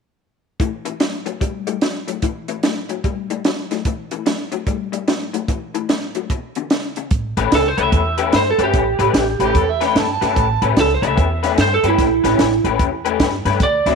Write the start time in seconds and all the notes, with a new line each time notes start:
0.60 A2 E3, kick, closed hi-hat
0.85 A2 E3, closed hi-hat
1.00 A2 F#3, snare, closed hi-hat
1.26 A2 F#3, closed hi-hat
1.41 A2 G3, kick, closed hi-hat
1.67 A2 G3, closed hi-hat
1.81 A2 F#3, snare, closed hi-hat
2.08 A2 F#3, closed hi-hat
2.22 A2 E3, kick, closed hi-hat
2.48 A2 E3, closed hi-hat
2.63 A2 F#3, snare, closed hi-hat
2.89 A2 F#3, closed hi-hat
3.04 A2 G3, kick, closed hi-hat
3.30 A2 G3, closed hi-hat
3.45 A2 F#3, snare, closed hi-hat
3.71 A2 F#3, snare, closed hi-hat
3.85 A2 E3, kick, closed hi-hat
4.11 A2 E3, closed hi-hat
4.26 A2 F#3, snare, closed hi-hat
4.52 A2 F#3, closed hi-hat
4.67 A2 G3, kick, closed hi-hat
4.92 A2 G3, closed hi-hat
5.08 A2 F#3, snare, closed hi-hat
5.33 A2 F#3, closed hi-hat
5.48 A2 E3, kick, closed hi-hat
5.74 A2 E3, closed hi-hat
5.89 A2 F#3, snare, closed hi-hat
6.15 A2 F#3, closed hi-hat
6.30 E2 B2, kick, closed hi-hat
6.55 E2 D3, closed hi-hat
6.70 E2 C#3, snare, closed hi-hat
6.96 E2 C#3, closed hi-hat
7.11 A1, kick, closed hi-hat
7.37 A1 A3 C#4 G4 B4, closed hi-hat
7.52 C#2 A4, snare, closed hi-hat
7.68 C5
7.77 C#2 A3 C#4 G4 B4, closed hi-hat
7.82 E5
7.92 E2, kick, closed hi-hat
8.18 A3 C#4 G4 B4, closed hi-hat
8.32 G2 C5, snare, closed hi-hat
8.51 A4
8.58 G2 A3 C#4 G4 B4, closed hi-hat
8.64 G4
8.74 A1, kick, closed hi-hat
8.99 A1 A3 C#4 G4 B4, closed hi-hat
9.13 A1, snare, closed hi-hat
9.39 A1 A3 C#4 G4 B4, closed hi-hat
9.44 G4
9.55 E2 A4, kick, closed hi-hat
9.72 E5
9.81 A3 C#4 G4 B4, snare, closed hi-hat
9.86 G5
9.95 G2 A5, snare, closed hi-hat
10.12 A5
10.21 G2 A3 C#4 G4 B4, snare, closed hi-hat
10.36 A1, kick, closed hi-hat
10.62 A1 A3 C#4 G4 B4, closed hi-hat
10.77 C#2 A4, snare, closed hi-hat
10.94 C5
11.02 C#2 A3 C#4 G4 B4, closed hi-hat
11.07 E5
11.18 E2, kick, closed hi-hat
11.43 A3 C#4 G4 B4, snare, closed hi-hat
11.58 G2 C5, snare, closed hi-hat
11.74 A4
11.83 G2 A3 C#4 G4 B4, closed hi-hat
11.88 E4
11.98 A1, kick, snare, closed hi-hat
12.24 A1 A3 C#4 G4 B4, snare, closed hi-hat
12.38 A1, snare, closed hi-hat
12.64 A1 A3 C#4 G4 B4, closed hi-hat
12.79 E2, kick, closed hi-hat
13.05 A3 C#4 G4 B4, closed hi-hat
13.20 G2, kick, snare, closed hi-hat
13.45 G2 A3 C#4 G4 B4, snare, closed hi-hat
13.60 D2 D5, kick, closed hi-hat
13.86 D2 D3 F#3 C4 E4, snare, closed hi-hat